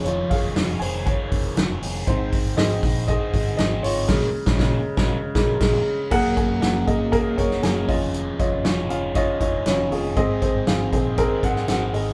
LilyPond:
<<
  \new Staff \with { instrumentName = "Upright piano" } { \time 4/4 \key des \major \tempo 4 = 119 <f' des''>8 <aes' f''>4 <c'' aes''>8 <des'' aes''>4. r8 | <ees' c''>4 <aes' ees''>4 <aes' ees''>4 <aes' ees''>8 <f' des''>8 | <des aes>8 r16 <des aes>16 <des aes>8 r16 <des aes>8 r16 <des aes>8 <des aes>8 r8 | <bes aes' ges''>8 <bes aes' aes''>8 <bes aes' ges''>8 <bes aes' ees''>8 <bes aes' bes'>8 <bes aes' des''>8 <bes aes' aes''>8 <des' f' ees''>8~ |
<des' f' ees''>16 r16 <des' f' ees''>8 <des' f' des''>8 <des' f' f''>8 <des' f' ees''>8 <des' f' ees''>8 <des' f' des''>8 <des' f' aes'>8 | <c' aes' ees''>8 <c' aes' c''>8 <c' aes' f''>8 <c' aes' c''>8 <c' aes' bes'>8 <c' aes' ges''>8 <c' aes' ges''>8 <c' aes' ees''>8 | }
  \new Staff \with { instrumentName = "Upright piano" } { \clef bass \time 4/4 \key des \major <ees f des'>4 r2. | <ees aes c'>8 r2 <ees aes c'>8 r4 | r1 | r1 |
r1 | aes,4. r2 r8 | }
  \new Staff \with { instrumentName = "Overdriven electric guitar" } { \time 4/4 \key des \major <f, ees f aes aes' des''>8 <ees aes aes' des''>8 <f, ees f aes aes' des''>8 <ees aes aes' des''>8 <ees aes aes' des''>4 <f, ees f aes aes' des''>8 <ees aes aes' des''>8 | <aes c' ees' c''>8 <c' ees' c''>8 <aes c' ees' c''>8 <c' ees' c''>8 <aes c' ees' c''>4 <aes c' ees' c''>8 <c' ees' c''>8 | <bes, aes des' f' bes'>8 r16 <des' f' bes'>16 <bes, aes des' f' bes'>8 r16 <des' f' bes'>8 r16 <aes des' f' bes'>8 <bes, aes des' f' bes'>8 r8 | <ges aes des' ges' bes'>4 <ges aes des' ges' bes'>8 <des' ges' bes'>8 <aes des' ges' bes'>8 <des' ges' bes'>8 <ges aes des' ges' bes'>8 <f, ees aes des' ees' aes'>8~ |
<f, ees aes des' ees' aes'>4 <f, ees aes des' ees' aes'>8 <aes des' ees' aes'>8 <aes des' ees' aes'>8 <aes des' ees' aes'>8 <f, ees aes des' ees' aes'>4 | <aes, ees aes c' ees' aes'>4 <aes, ees aes c' ees' aes'>8 <aes c' ees' aes'>8 <aes c' ees' aes'>8 <aes c' ees' aes'>8 <aes, ees aes c' ees' aes'>4 | }
  \new Staff \with { instrumentName = "Fingered electric bass" } { \clef bass \time 4/4 \key des \major f,,8 r16 f,,16 f,,8 f,,8. r16 f,,8 f,,8 f,,8 | aes,,8 r16 aes,,16 aes,,8 bes,,8. r16 aes,,8 aes,,8 aes,,8 | bes,,8 r16 bes,,16 bes,,8 r16 bes,,8 r16 bes,,8 bes,,8 r8 | ges,,8 r16 ges,,16 ges,,8 aes,,8. r16 ges,,8 ges,,8 f,,8~ |
f,,8 r16 f,,16 f,,8 f,,8. r16 f,,8 f,,8 f,,8 | aes,,8 r16 aes,,16 aes,,8 bes,,8. r16 aes,,8 aes,,8 aes,,8 | }
  \new DrumStaff \with { instrumentName = "Drums" } \drummode { \time 4/4 <hho hhp>8 <hho hhp bd>8 <hho hhp sn>8 <hho hhp>8 <hho hhp bd>8 <hho hhp bd>8 <hho hhp sn>8 <hho hhp>8 | <hho hhp bd>8 <hho hhp bd>8 <hho hhp sn>8 <hho hhp bd>8 <hho hhp bd>8 <hho hhp bd>8 <hho hhp sn>8 <hho hhp>8 | <cymc bd sn>8. <bd sn>16 <bd sn>8. <bd sn>16 r8 <bd sn>8 <cymc bd sn>4 | <cymc bd>8 <hh bd>8 <hh sn>8 <hh bd>8 <hh bd>8 <hh bd>16 sn16 <hh sn>8 <hho bd>8 |
hh8 <hh bd>8 <hh sn>8 hh8 <hh bd>8 <hh bd>8 <hh sn>8 hho8 | <hh bd>8 <hh bd>8 <hh sn>8 <hh bd>8 <hh bd>8 <hh bd>16 sn16 <hh sn>8 hho8 | }
>>